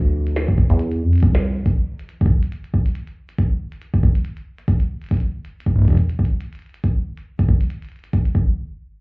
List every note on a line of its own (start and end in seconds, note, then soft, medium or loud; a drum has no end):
0.00 0.54 D2 loud
0.27 closed hi-hat soft
0.36 snare loud
0.36 closed hi-hat medium
0.48 kick loud
0.58 kick loud
0.70 1.03 E2 medium
0.70 closed hi-hat soft
0.79 closed hi-hat medium
0.92 closed hi-hat soft
1.01 1.24 F2 medium
1.13 closed hi-hat soft
1.16 closed hi-hat soft
1.18 closed hi-hat soft
1.20 1.62 C2 medium
1.20 kick loud
1.20 closed hi-hat soft
1.23 closed hi-hat medium
1.35 snare loud
1.35 closed hi-hat soft
1.66 kick loud
1.66 closed hi-hat medium
1.99 closed hi-hat soft
2.09 closed hi-hat medium
2.21 kick loud
2.21 closed hi-hat soft
2.26 kick loud
2.43 closed hi-hat soft
2.52 closed hi-hat medium
2.64 closed hi-hat soft
2.74 kick medium
2.86 closed hi-hat soft
2.95 closed hi-hat medium
3.07 closed hi-hat soft
3.29 closed hi-hat soft
3.38 kick loud
3.38 closed hi-hat medium
3.72 closed hi-hat soft
3.82 closed hi-hat medium
3.94 kick loud
3.94 closed hi-hat soft
4.03 kick loud
4.15 closed hi-hat soft
4.25 closed hi-hat medium
4.37 closed hi-hat soft
4.58 closed hi-hat soft
4.68 kick loud
4.68 closed hi-hat medium
4.80 closed hi-hat soft
5.02 closed hi-hat soft
5.04 closed hi-hat soft
5.06 closed hi-hat soft
5.09 kick loud
5.09 closed hi-hat soft
5.11 closed hi-hat medium
5.14 closed hi-hat soft
5.17 closed hi-hat soft
5.20 closed hi-hat soft
5.45 closed hi-hat soft
5.60 closed hi-hat medium
5.66 kick medium
5.66 closed hi-hat soft
5.76 kick soft
5.79 kick soft
5.82 kick medium
5.85 kick medium
5.88 kick medium
5.88 closed hi-hat soft
5.90 kick medium
5.93 kick medium
5.95 kick medium
5.95 closed hi-hat medium
6.10 closed hi-hat soft
6.19 kick medium
6.25 closed hi-hat soft
6.41 closed hi-hat medium
6.53 closed hi-hat soft
6.55 closed hi-hat soft
6.59 closed hi-hat soft
6.62 closed hi-hat soft
6.66 closed hi-hat soft
6.69 closed hi-hat soft
6.74 closed hi-hat medium
6.84 kick medium
6.84 closed hi-hat medium
7.17 closed hi-hat soft
7.39 kick loud
7.39 closed hi-hat soft
7.49 kick loud
7.61 closed hi-hat medium
7.70 closed hi-hat medium
7.82 closed hi-hat soft
7.85 closed hi-hat soft
7.89 closed hi-hat soft
7.92 closed hi-hat soft
7.96 closed hi-hat soft
7.99 closed hi-hat soft
8.04 closed hi-hat medium
8.13 kick loud
8.13 closed hi-hat medium
8.25 closed hi-hat soft
8.35 kick loud